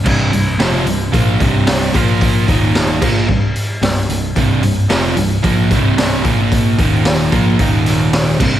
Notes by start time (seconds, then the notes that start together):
0.05 C1 C2 G2 C3, kick, crash
0.32 C1 C2 G2, open hi-hat
0.58 F1 F2 C3 F3, snare, open hi-hat
0.85 C1 C2 G2, open hi-hat
1.12 A#1 A#2 F3 A#3, kick, open hi-hat
1.39 C1 C2 G2 C3, kick, open hi-hat
1.67 snare, open hi-hat
1.94 A#1 A#2 F3 A#3, kick, open hi-hat
2.21 kick, open hi-hat
2.47 D#1 D#2 A#2 D#3, kick, open hi-hat
2.75 snare, open hi-hat
3.01 A#1 A#2 F3 A#3, kick, crash
3.28 C1 C2 G2, kick
3.56 open hi-hat
3.81 C1 C2 G2, snare, open hi-hat
4.09 C1 C2 G2, open hi-hat
4.36 C1 C2 G2 C3, kick, open hi-hat
4.62 C1 C2 G2, open hi-hat
4.89 F1 F2 C3 F3, snare, open hi-hat
5.16 C1 C2 G2, open hi-hat
5.43 A#1 A#2 F3 A#3, kick, open hi-hat
5.70 C1 C2 G2 C3, kick, snare, open hi-hat
5.98 snare, open hi-hat
6.24 A#1 A#2 F3 A#3, kick, open hi-hat
6.52 kick, open hi-hat
6.78 D#1 D#2 A#2 D#3, kick, open hi-hat
7.05 snare, open hi-hat
7.31 A#1 A#2 F3 A#3, kick, open hi-hat
7.58 D#1 D#2 A#2 D#3, kick, open hi-hat
7.86 snare, open hi-hat
8.13 snare, open hi-hat
8.39 C1 C2 G2 C3, kick, crash